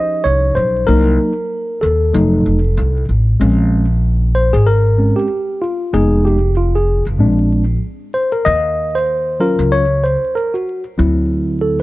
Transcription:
0.00 0.84 F3 medium
0.00 0.84 C#4 medium
0.00 0.84 D#4 medium
0.00 0.84 G4 medium
0.00 0.25 D#5 loud
0.24 0.53 C2 medium
0.24 0.57 C#5 loud
0.55 0.84 B1 medium
0.55 0.88 C5 medium
0.87 1.16 C2 loud
0.87 1.31 F#3 medium
0.87 1.32 A#3 medium
0.87 1.32 D#4 medium
0.87 1.85 A#4 loud
1.81 2.10 D#2 medium
1.81 3.04 A4 medium
2.14 2.42 F1 loud
2.14 2.58 F#3 medium
2.14 2.58 A3 medium
2.14 2.58 D#4 medium
2.46 2.74 F1 medium
2.77 3.05 C2 medium
3.09 3.37 A1 medium
3.40 4.49 A#1 loud
3.40 3.84 G#3 medium
3.40 3.84 C4 medium
3.40 3.85 C#4 medium
4.35 4.54 C5 loud
4.53 5.09 G#1 medium
4.53 4.67 G#4 medium
4.67 5.18 A#4 loud
4.98 5.27 G#3 soft
4.98 5.27 C4 soft
4.98 5.27 C#4 soft
5.16 5.63 G4 medium
5.62 5.94 F4 medium
5.93 7.02 F1 loud
5.93 6.37 G#3 medium
5.93 6.37 B3 medium
5.93 6.37 D#4 medium
5.93 6.26 G#4 loud
6.25 6.54 G4 medium
6.57 6.75 F4 medium
6.76 7.04 G#4 medium
7.06 7.20 F1 medium
7.19 7.75 A#1 medium
7.19 7.63 G#3 medium
7.19 7.63 C4 medium
7.19 7.64 D4 medium
8.14 8.31 C5 medium
8.32 8.46 A#4 medium
8.45 9.55 D#2 loud
8.45 8.97 D#5 loud
8.95 9.42 C5 medium
9.40 9.84 F#3 medium
9.40 9.84 C#4 medium
9.40 9.84 F4 medium
9.40 9.73 A#4 medium
9.59 10.14 C#2 medium
9.72 10.05 C#5 loud
10.04 10.36 C5 medium
10.35 10.54 A#4 medium
10.54 10.83 F#4 medium
10.98 11.82 D2 loud
10.98 11.82 F#3 medium
10.98 11.82 C4 medium
10.98 11.82 E4 medium
11.61 11.78 A4 medium

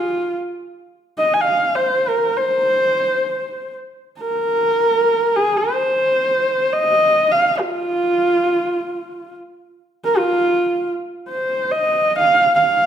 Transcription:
0.00 0.35 F4 medium
1.18 1.35 D#5 medium
1.34 1.42 G#5 medium
1.41 1.77 F5 medium
1.75 2.10 C5 medium
2.08 2.39 A#4 medium
2.38 3.74 C5 medium
4.19 5.37 A#4 medium
5.36 5.58 G#4 medium
5.57 6.74 C5 medium
6.73 7.33 D#5 medium
7.31 7.62 F5 medium
7.60 9.35 F4 medium
10.04 10.19 A#4 medium
10.17 10.89 F4 medium
11.29 11.73 C5 medium
11.71 12.18 D#5 medium
12.19 12.54 F5 medium
12.55 12.86 F5 medium

